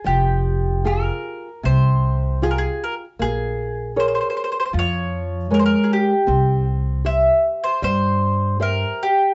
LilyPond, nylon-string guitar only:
\new Staff \with { instrumentName = "Nylon-string guitar" } { \time 4/4 \key f \minor \tempo 4 = 78 f4 <f' g' aes'>4 c4 <f' g' aes'>4 | bes4 <aes' bes' des''>4 f4 <aes bes' des''>4 | c'4 <g' c'' e''>4 g4 <g' c'' e''>4 | }